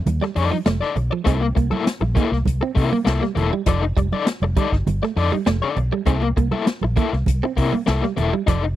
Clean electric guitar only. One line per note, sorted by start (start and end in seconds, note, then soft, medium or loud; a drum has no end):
0.21 0.30 G3 medium
0.36 muted clean electric guitar stroke soft
0.52 0.60 F3 medium
0.66 0.75 A3 medium
0.97 muted clean electric guitar stroke soft
1.12 1.20 F3 medium
1.26 1.35 C4 medium
1.43 muted clean electric guitar stroke soft
1.57 1.66 A#3 medium
2.17 2.26 A#3 medium
2.63 2.70 C4 medium
2.77 muted clean electric guitar stroke soft
2.93 3.01 A#3 medium
3.23 3.31 G3 medium
3.37 muted clean electric guitar stroke soft
3.53 3.61 G3 medium
3.67 3.76 F3 medium
3.83 muted clean electric guitar stroke soft
3.97 4.06 G3 medium
4.57 4.66 G3 medium
5.03 5.11 A3 medium
5.17 muted clean electric guitar stroke soft
5.32 5.40 G3 medium
5.46 5.55 A3 medium
5.77 muted clean electric guitar stroke soft
5.92 6.01 G3 medium
6.07 6.16 C4 medium
6.23 muted clean electric guitar stroke soft
6.37 6.46 A#3 medium
6.97 7.06 A#3 medium
7.43 7.51 C4 medium
7.57 muted clean electric guitar stroke soft
7.73 7.81 A#3 medium
8.04 8.12 G3 medium
8.18 muted clean electric guitar stroke soft
8.33 8.41 G3 medium
8.48 8.57 F3 medium
8.64 muted clean electric guitar stroke soft